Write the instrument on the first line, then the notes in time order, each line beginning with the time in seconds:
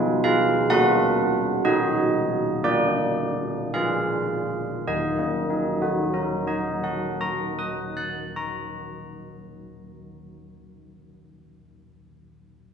church bells
Already playing: B3 D#4 F4 G#4 G#5
0.24 F4 F5
0.70 A#3 F#4 F#5
1.65 D#4 F#4 D#5
2.64 A#3 D4 D5
3.74 F4 G#4 F5
4.88 D#3 D#5
5.19 A#3
5.50 D#4
5.82 F#4
6.14 A#4
6.47 D#5
6.84 F#5
7.21 A#5
7.59 D#6
7.97 F#6
8.36 A#5